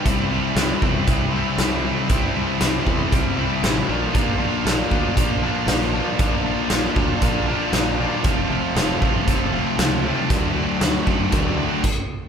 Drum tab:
CC |----------------|----------------|----------------|----------------|
HH |x---x---x---x---|x---x---x---x---|x---x---x---x---|x---x---x---x---|
SD |----o-------o---|----o-------o---|----o-------oo--|----o-------o---|
BD |o-----o-o-------|o-----o-o-------|o-----o-o-------|o-----o-o-------|

CC |----------------|------------x---|
HH |x---x---x---x---|x---x---x-------|
SD |----o-------o---|----o-----------|
BD |o-----o-o-------|o-----o-o---o---|